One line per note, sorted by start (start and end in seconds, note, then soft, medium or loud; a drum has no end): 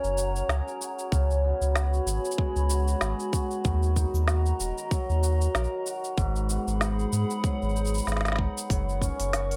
0.00 0.43 F#1 medium
0.00 2.38 D#3 medium
0.00 4.91 F#3 medium
0.00 6.43 C#4 medium
0.00 1.56 D#4 medium
0.00 0.17 F#4 medium
0.00 6.14 F#4 medium
0.00 0.66 A#4 medium
0.00 1.10 C#5 medium
0.00 1.10 A#5 medium
0.04 cabasa soft
0.17 0.80 F#4 medium
0.17 cabasa medium
0.36 cabasa soft
0.48 0.61 C#2 medium
0.48 2.06 G#4 medium
0.48 snare medium
0.48 cabasa soft
0.67 1.50 A#4 medium
0.67 cabasa soft
0.81 1.74 F#4 medium
0.81 cabasa medium
0.99 cabasa soft
1.12 1.53 C#2 medium
1.12 3.70 C#3 medium
1.12 3.63 C#5 medium
1.12 3.63 B5 medium
1.12 kick loud
1.12 cabasa soft
1.31 cabasa soft
1.44 4.66 B3 medium
1.61 2.00 C#2 medium
1.61 cabasa soft
1.75 2.69 F#4 medium
1.75 snare medium
1.75 cabasa soft
1.94 cabasa soft
2.06 2.19 G#1 loud
2.06 3.01 G#4 medium
2.06 cabasa medium
2.25 cabasa soft
2.32 cabasa soft
2.38 3.70 G#3 medium
2.38 kick loud
2.56 2.95 C#2 medium
2.56 cabasa soft
2.70 3.33 F#4 medium
2.70 cabasa medium
2.88 cabasa soft
3.01 3.14 G#1 medium
3.01 6.05 G#4 medium
3.01 snare medium
3.01 cabasa soft
3.20 cabasa soft
3.33 4.28 F#4 medium
3.33 kick loud
3.33 cabasa medium
3.51 cabasa soft
3.65 4.06 D#2 medium
3.65 9.56 D#3 medium
3.65 6.16 D#5 medium
3.65 6.16 A#5 medium
3.65 kick loud
3.65 cabasa soft
3.83 cabasa soft
3.96 6.80 D#4 medium
3.96 kick medium
3.96 cabasa medium
4.14 4.53 D#2 medium
4.14 cabasa soft
4.28 5.22 F#4 medium
4.28 snare medium
4.28 cabasa soft
4.46 cabasa soft
4.60 4.72 D#1 loud
4.60 5.54 A#4 medium
4.60 cabasa medium
4.78 cabasa soft
4.91 7.43 F#3 medium
4.91 kick loud
4.91 cabasa soft
5.09 5.48 D#2 loud
5.09 cabasa soft
5.23 5.86 F#4 medium
5.23 cabasa medium
5.42 cabasa soft
5.55 5.67 A#1 medium
5.55 6.55 A#4 medium
5.55 snare medium
5.55 cabasa soft
5.64 cabasa soft
5.87 9.33 F#4 medium
5.87 cabasa medium
6.04 cabasa soft
6.18 6.58 G#1 loud
6.18 8.75 G#2 medium
6.18 8.68 G#4 medium
6.18 8.68 F#5 medium
6.18 8.68 B5 loud
6.18 kick loud
6.18 cabasa soft
6.36 cabasa soft
6.49 9.56 B3 medium
6.49 cabasa medium
6.67 7.06 G#1 medium
6.67 cabasa soft
6.80 7.75 D#4 medium
6.80 snare medium
6.80 cabasa soft
6.99 cabasa soft
7.12 7.25 G#2 loud
7.12 8.06 B4 medium
7.12 cabasa medium
7.30 cabasa soft
7.43 8.70 F#3 medium
7.43 kick loud
7.43 cabasa soft
7.62 8.01 G#1 medium
7.62 cabasa soft
7.69 cabasa soft
7.75 8.38 D#4 medium
7.75 cabasa soft
7.85 cabasa soft
7.87 cabasa soft
7.94 cabasa soft
7.98 cabasa medium
8.02 cabasa soft
8.05 8.48 G#1 medium
8.05 9.56 B4 medium
8.05 snare soft
8.05 cabasa soft
8.08 cabasa soft
8.12 snare soft
8.17 snare soft
8.21 snare medium
8.21 cabasa soft
8.25 snare medium
8.25 cabasa soft
8.28 snare medium
8.32 snare medium
8.36 9.56 D#4 medium
8.36 kick medium
8.36 snare medium
8.58 cabasa medium
8.70 9.11 F#1 medium
8.70 9.56 F#3 medium
8.70 9.56 A#4 medium
8.70 9.56 F#5 medium
8.70 9.56 C#6 loud
8.70 kick loud
8.70 open hi-hat medium
8.70 cabasa soft
8.89 cabasa soft
9.02 9.56 C#4 medium
9.02 kick medium
9.02 cabasa medium
9.20 9.56 F#1 medium
9.20 open hi-hat soft
9.20 cabasa soft
9.33 9.56 F#4 medium
9.33 snare medium
9.33 open hi-hat medium
9.33 cabasa soft
9.51 open hi-hat soft
9.51 cabasa soft